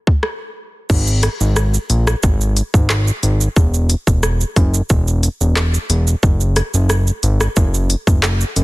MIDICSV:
0, 0, Header, 1, 3, 480
1, 0, Start_track
1, 0, Tempo, 666667
1, 646, Time_signature, 4, 2, 24, 8
1, 6220, End_track
2, 0, Start_track
2, 0, Title_t, "Analog synth bass"
2, 0, Program_c, 0, 38
2, 646, Note_on_c, 0, 32, 105
2, 927, Note_off_c, 0, 32, 0
2, 1013, Note_on_c, 0, 32, 101
2, 1283, Note_off_c, 0, 32, 0
2, 1366, Note_on_c, 0, 34, 103
2, 1550, Note_off_c, 0, 34, 0
2, 1609, Note_on_c, 0, 32, 111
2, 1888, Note_off_c, 0, 32, 0
2, 1972, Note_on_c, 0, 32, 98
2, 2242, Note_off_c, 0, 32, 0
2, 2326, Note_on_c, 0, 32, 91
2, 2510, Note_off_c, 0, 32, 0
2, 2566, Note_on_c, 0, 28, 109
2, 2847, Note_off_c, 0, 28, 0
2, 2932, Note_on_c, 0, 28, 90
2, 3202, Note_off_c, 0, 28, 0
2, 3286, Note_on_c, 0, 30, 106
2, 3469, Note_off_c, 0, 30, 0
2, 3528, Note_on_c, 0, 28, 112
2, 3808, Note_off_c, 0, 28, 0
2, 3894, Note_on_c, 0, 28, 94
2, 4163, Note_off_c, 0, 28, 0
2, 4246, Note_on_c, 0, 28, 98
2, 4430, Note_off_c, 0, 28, 0
2, 4486, Note_on_c, 0, 30, 107
2, 4767, Note_off_c, 0, 30, 0
2, 4853, Note_on_c, 0, 30, 99
2, 5123, Note_off_c, 0, 30, 0
2, 5206, Note_on_c, 0, 32, 106
2, 5389, Note_off_c, 0, 32, 0
2, 5448, Note_on_c, 0, 30, 115
2, 5728, Note_off_c, 0, 30, 0
2, 5812, Note_on_c, 0, 30, 94
2, 6082, Note_off_c, 0, 30, 0
2, 6166, Note_on_c, 0, 30, 96
2, 6220, Note_off_c, 0, 30, 0
2, 6220, End_track
3, 0, Start_track
3, 0, Title_t, "Drums"
3, 52, Note_on_c, 9, 36, 98
3, 124, Note_off_c, 9, 36, 0
3, 165, Note_on_c, 9, 37, 92
3, 237, Note_off_c, 9, 37, 0
3, 646, Note_on_c, 9, 36, 115
3, 646, Note_on_c, 9, 49, 101
3, 646, Note_on_c, 9, 82, 78
3, 718, Note_off_c, 9, 36, 0
3, 718, Note_off_c, 9, 49, 0
3, 718, Note_off_c, 9, 82, 0
3, 772, Note_on_c, 9, 82, 56
3, 844, Note_off_c, 9, 82, 0
3, 885, Note_on_c, 9, 42, 76
3, 885, Note_on_c, 9, 82, 58
3, 887, Note_on_c, 9, 37, 97
3, 957, Note_off_c, 9, 42, 0
3, 957, Note_off_c, 9, 82, 0
3, 959, Note_off_c, 9, 37, 0
3, 1013, Note_on_c, 9, 82, 83
3, 1085, Note_off_c, 9, 82, 0
3, 1126, Note_on_c, 9, 37, 93
3, 1126, Note_on_c, 9, 82, 87
3, 1198, Note_off_c, 9, 37, 0
3, 1198, Note_off_c, 9, 82, 0
3, 1253, Note_on_c, 9, 82, 66
3, 1325, Note_off_c, 9, 82, 0
3, 1366, Note_on_c, 9, 42, 70
3, 1366, Note_on_c, 9, 82, 50
3, 1438, Note_off_c, 9, 42, 0
3, 1438, Note_off_c, 9, 82, 0
3, 1493, Note_on_c, 9, 37, 104
3, 1493, Note_on_c, 9, 82, 82
3, 1565, Note_off_c, 9, 37, 0
3, 1565, Note_off_c, 9, 82, 0
3, 1605, Note_on_c, 9, 82, 95
3, 1609, Note_on_c, 9, 36, 98
3, 1677, Note_off_c, 9, 82, 0
3, 1681, Note_off_c, 9, 36, 0
3, 1735, Note_on_c, 9, 82, 64
3, 1807, Note_off_c, 9, 82, 0
3, 1847, Note_on_c, 9, 42, 74
3, 1847, Note_on_c, 9, 82, 56
3, 1919, Note_off_c, 9, 42, 0
3, 1919, Note_off_c, 9, 82, 0
3, 1972, Note_on_c, 9, 36, 102
3, 1975, Note_on_c, 9, 82, 73
3, 2044, Note_off_c, 9, 36, 0
3, 2047, Note_off_c, 9, 82, 0
3, 2085, Note_on_c, 9, 37, 97
3, 2085, Note_on_c, 9, 39, 103
3, 2086, Note_on_c, 9, 82, 76
3, 2157, Note_off_c, 9, 37, 0
3, 2157, Note_off_c, 9, 39, 0
3, 2158, Note_off_c, 9, 82, 0
3, 2214, Note_on_c, 9, 82, 57
3, 2286, Note_off_c, 9, 82, 0
3, 2326, Note_on_c, 9, 42, 74
3, 2326, Note_on_c, 9, 82, 55
3, 2398, Note_off_c, 9, 42, 0
3, 2398, Note_off_c, 9, 82, 0
3, 2454, Note_on_c, 9, 82, 73
3, 2526, Note_off_c, 9, 82, 0
3, 2566, Note_on_c, 9, 36, 120
3, 2566, Note_on_c, 9, 82, 78
3, 2638, Note_off_c, 9, 36, 0
3, 2638, Note_off_c, 9, 82, 0
3, 2693, Note_on_c, 9, 82, 55
3, 2765, Note_off_c, 9, 82, 0
3, 2805, Note_on_c, 9, 42, 79
3, 2805, Note_on_c, 9, 82, 57
3, 2877, Note_off_c, 9, 42, 0
3, 2877, Note_off_c, 9, 82, 0
3, 2932, Note_on_c, 9, 36, 89
3, 2933, Note_on_c, 9, 82, 86
3, 3004, Note_off_c, 9, 36, 0
3, 3005, Note_off_c, 9, 82, 0
3, 3046, Note_on_c, 9, 37, 93
3, 3046, Note_on_c, 9, 82, 86
3, 3118, Note_off_c, 9, 37, 0
3, 3118, Note_off_c, 9, 82, 0
3, 3173, Note_on_c, 9, 82, 64
3, 3245, Note_off_c, 9, 82, 0
3, 3286, Note_on_c, 9, 36, 94
3, 3286, Note_on_c, 9, 42, 69
3, 3286, Note_on_c, 9, 82, 50
3, 3358, Note_off_c, 9, 36, 0
3, 3358, Note_off_c, 9, 42, 0
3, 3358, Note_off_c, 9, 82, 0
3, 3413, Note_on_c, 9, 82, 78
3, 3485, Note_off_c, 9, 82, 0
3, 3525, Note_on_c, 9, 82, 95
3, 3528, Note_on_c, 9, 36, 98
3, 3597, Note_off_c, 9, 82, 0
3, 3600, Note_off_c, 9, 36, 0
3, 3654, Note_on_c, 9, 82, 64
3, 3726, Note_off_c, 9, 82, 0
3, 3767, Note_on_c, 9, 42, 73
3, 3767, Note_on_c, 9, 82, 54
3, 3839, Note_off_c, 9, 42, 0
3, 3839, Note_off_c, 9, 82, 0
3, 3895, Note_on_c, 9, 82, 75
3, 3967, Note_off_c, 9, 82, 0
3, 4005, Note_on_c, 9, 37, 100
3, 4005, Note_on_c, 9, 39, 99
3, 4006, Note_on_c, 9, 82, 72
3, 4077, Note_off_c, 9, 37, 0
3, 4077, Note_off_c, 9, 39, 0
3, 4078, Note_off_c, 9, 82, 0
3, 4134, Note_on_c, 9, 82, 59
3, 4206, Note_off_c, 9, 82, 0
3, 4246, Note_on_c, 9, 42, 76
3, 4246, Note_on_c, 9, 82, 53
3, 4318, Note_off_c, 9, 42, 0
3, 4318, Note_off_c, 9, 82, 0
3, 4373, Note_on_c, 9, 82, 73
3, 4445, Note_off_c, 9, 82, 0
3, 4486, Note_on_c, 9, 36, 116
3, 4486, Note_on_c, 9, 82, 78
3, 4558, Note_off_c, 9, 36, 0
3, 4558, Note_off_c, 9, 82, 0
3, 4612, Note_on_c, 9, 82, 54
3, 4684, Note_off_c, 9, 82, 0
3, 4724, Note_on_c, 9, 42, 81
3, 4724, Note_on_c, 9, 82, 58
3, 4727, Note_on_c, 9, 37, 95
3, 4796, Note_off_c, 9, 42, 0
3, 4796, Note_off_c, 9, 82, 0
3, 4799, Note_off_c, 9, 37, 0
3, 4853, Note_on_c, 9, 82, 87
3, 4925, Note_off_c, 9, 82, 0
3, 4966, Note_on_c, 9, 37, 93
3, 4966, Note_on_c, 9, 82, 86
3, 5038, Note_off_c, 9, 37, 0
3, 5038, Note_off_c, 9, 82, 0
3, 5093, Note_on_c, 9, 82, 63
3, 5165, Note_off_c, 9, 82, 0
3, 5206, Note_on_c, 9, 42, 72
3, 5206, Note_on_c, 9, 82, 51
3, 5278, Note_off_c, 9, 42, 0
3, 5278, Note_off_c, 9, 82, 0
3, 5333, Note_on_c, 9, 37, 103
3, 5333, Note_on_c, 9, 82, 79
3, 5405, Note_off_c, 9, 37, 0
3, 5405, Note_off_c, 9, 82, 0
3, 5445, Note_on_c, 9, 82, 95
3, 5448, Note_on_c, 9, 36, 98
3, 5517, Note_off_c, 9, 82, 0
3, 5520, Note_off_c, 9, 36, 0
3, 5574, Note_on_c, 9, 82, 66
3, 5646, Note_off_c, 9, 82, 0
3, 5687, Note_on_c, 9, 42, 75
3, 5687, Note_on_c, 9, 82, 53
3, 5759, Note_off_c, 9, 42, 0
3, 5759, Note_off_c, 9, 82, 0
3, 5812, Note_on_c, 9, 36, 101
3, 5815, Note_on_c, 9, 82, 72
3, 5884, Note_off_c, 9, 36, 0
3, 5887, Note_off_c, 9, 82, 0
3, 5925, Note_on_c, 9, 37, 97
3, 5925, Note_on_c, 9, 39, 99
3, 5926, Note_on_c, 9, 82, 77
3, 5997, Note_off_c, 9, 37, 0
3, 5997, Note_off_c, 9, 39, 0
3, 5998, Note_off_c, 9, 82, 0
3, 6054, Note_on_c, 9, 82, 59
3, 6126, Note_off_c, 9, 82, 0
3, 6166, Note_on_c, 9, 42, 80
3, 6166, Note_on_c, 9, 82, 56
3, 6220, Note_off_c, 9, 42, 0
3, 6220, Note_off_c, 9, 82, 0
3, 6220, End_track
0, 0, End_of_file